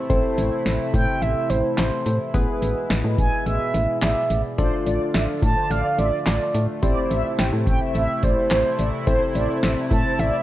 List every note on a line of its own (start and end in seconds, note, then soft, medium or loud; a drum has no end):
0.00 2.30 A3 medium
0.00 4.54 E4 medium
0.10 0.23 A1 loud
0.10 2.32 C3 medium
0.10 2.30 C4 medium
0.10 2.30 E4 medium
0.10 2.30 A4 medium
0.10 2.30 C5 medium
0.10 kick loud
0.10 closed hi-hat medium
0.38 0.51 A1 loud
0.38 closed hi-hat medium
0.66 0.79 A1 loud
0.66 snare loud
0.66 closed hi-hat medium
0.94 1.07 A2 loud
0.94 1.23 G5 loud
0.94 kick loud
0.94 closed hi-hat medium
1.22 1.35 A1 loud
1.22 1.51 E5 loud
1.22 closed hi-hat medium
1.50 1.63 A1 loud
1.50 1.77 C5 loud
1.50 closed hi-hat medium
1.78 1.91 A1 loud
1.78 2.17 C5 medium
1.78 snare loud
1.78 clap medium
1.78 closed hi-hat medium
2.06 2.19 A2 loud
2.06 closed hi-hat medium
2.34 2.47 A1 loud
2.34 4.56 B2 medium
2.34 4.56 G#3 medium
2.34 3.99 B3 medium
2.34 3.99 E4 medium
2.34 3.99 G#4 medium
2.34 3.99 B4 medium
2.34 kick loud
2.34 closed hi-hat medium
2.62 2.75 A1 loud
2.62 closed hi-hat medium
2.90 3.03 A1 loud
2.90 snare loud
2.90 closed hi-hat medium
3.04 3.17 A2 loud
3.18 3.31 A1 loud
3.18 3.44 G#5 loud
3.18 kick loud
3.18 closed hi-hat medium
3.46 3.59 A1 loud
3.46 3.98 E5 loud
3.46 closed hi-hat medium
3.74 3.87 A1 loud
3.74 closed hi-hat medium
4.02 4.15 A1 loud
4.02 4.58 B3 medium
4.02 4.58 E4 soft
4.02 4.58 G#4 soft
4.02 4.57 D5 medium
4.02 4.42 E5 medium
4.02 snare loud
4.02 clap medium
4.02 closed hi-hat medium
4.30 4.43 A1 loud
4.30 closed hi-hat medium
4.58 4.71 A1 loud
4.58 6.81 D3 medium
4.58 10.43 A3 medium
4.58 6.79 D4 medium
4.58 6.79 F4 medium
4.58 6.81 F4 medium
4.58 6.79 A4 medium
4.58 4.74 C5 loud
4.58 6.79 D5 medium
4.58 kick loud
4.58 closed hi-hat loud
4.86 4.99 A1 loud
4.86 5.02 D5 medium
4.86 closed hi-hat medium
5.14 5.27 A1 loud
5.14 5.22 E5 medium
5.14 snare loud
5.14 closed hi-hat medium
5.42 5.55 A2 loud
5.42 5.72 A5 loud
5.42 kick loud
5.42 closed hi-hat medium
5.56 5.64 C5 medium
5.70 5.83 A1 loud
5.70 5.86 D5 medium
5.70 5.98 F5 loud
5.70 closed hi-hat medium
5.98 6.11 A1 loud
5.98 6.25 D5 loud
5.98 6.06 E5 medium
5.98 closed hi-hat medium
6.26 6.39 A1 loud
6.26 6.66 D5 medium
6.26 snare loud
6.26 clap medium
6.26 closed hi-hat medium
6.54 6.67 A2 loud
6.54 closed hi-hat medium
6.83 6.95 A1 loud
6.83 10.43 C3 medium
6.83 9.03 C4 medium
6.83 10.43 E4 medium
6.83 9.03 E4 medium
6.83 9.03 G4 medium
6.83 9.03 C5 medium
6.83 6.99 D5 loud
6.83 kick loud
6.83 closed hi-hat medium
7.11 7.23 A1 loud
7.11 7.27 E5 medium
7.11 closed hi-hat medium
7.39 7.51 A1 loud
7.39 7.47 G5 medium
7.39 snare loud
7.39 closed hi-hat medium
7.53 7.66 A2 loud
7.67 7.79 A1 loud
7.67 7.80 G5 loud
7.67 kick loud
7.67 closed hi-hat medium
7.81 7.97 E5 medium
7.95 8.08 A1 loud
7.95 8.25 E5 loud
7.95 closed hi-hat medium
8.23 8.36 A1 loud
8.23 8.51 C5 medium
8.23 8.31 D5 medium
8.23 kick loud
8.23 closed hi-hat medium
8.51 8.64 A1 loud
8.51 8.59 C5 medium
8.51 8.90 C5 medium
8.51 snare loud
8.51 clap medium
8.51 closed hi-hat medium
8.79 8.92 A1 loud
8.79 8.87 D5 medium
8.79 closed hi-hat medium
9.07 9.20 A1 loud
9.07 10.43 C4 medium
9.07 10.43 E4 medium
9.07 10.43 A4 medium
9.07 10.43 C5 medium
9.07 9.23 C5 loud
9.07 kick loud
9.07 closed hi-hat medium
9.35 9.48 A1 loud
9.35 9.51 D5 medium
9.35 closed hi-hat medium
9.63 9.76 A1 loud
9.63 9.71 E5 medium
9.63 snare loud
9.63 closed hi-hat medium
9.91 10.04 A2 loud
9.91 10.21 A5 loud
9.91 kick loud
9.91 closed hi-hat medium
10.05 10.13 C5 medium
10.19 10.32 A1 loud
10.19 10.35 D5 medium
10.19 10.43 E5 loud
10.19 closed hi-hat medium